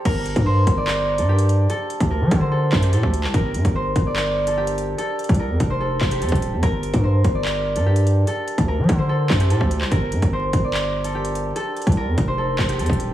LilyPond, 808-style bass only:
\new Staff \with { instrumentName = "808-style bass" } { \clef bass \time 4/4 \key g \minor \tempo 4 = 146 g,,8. g,8. g,,4~ g,,16 g,4~ g,16 | r8. d,8 fis16 d4 fis,8 a,16 d,8 c,16 | g,,8 g,16 g,,8. g,,2~ g,,8 | r8. c,8 f,16 f,,4 f,,8 f,16 ees,,8 f,16 |
g,,8. g,8. g,,4~ g,,16 g,4~ g,16 | r8. d,8 fis16 d4 fis,8 a,16 d,8 c,16 | g,,8 g,16 g,,8. g,,2~ g,,8 | r8. c,8 f,16 f,,4 f,,8 f,16 ees,,8 f,16 | }